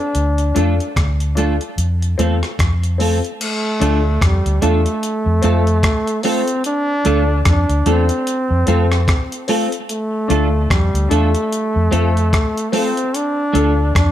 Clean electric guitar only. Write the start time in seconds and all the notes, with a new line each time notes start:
0.56 A3 D4 F4 A4
1.37 A3 D4 F4 A4
1.62 muted clean electric guitar stroke
2.19 A3 C4 F4 A4
3.00 A3 C4 F4 A4
3.81 A3 D4 F4 A4
4.62 A3 D4 F4 A4
4.86 muted clean electric guitar stroke
5.43 A3 C4 F4 A4
6.24 A3 C4 F4 A4
7.05 A3 D4 F4 A4
7.86 A3 D4 F4 A4
8.11 muted clean electric guitar stroke
8.67 A3 C4 F4 A4
9.49 A3 C4 F4 A4
10.30 A3 D4 F4 A4
11.11 A3 D4 F4 A4
11.35 muted clean electric guitar stroke
11.91 A3 C4 F4 A4
12.73 A3 C4 F4 A4
13.53 A3 D4 F4 A4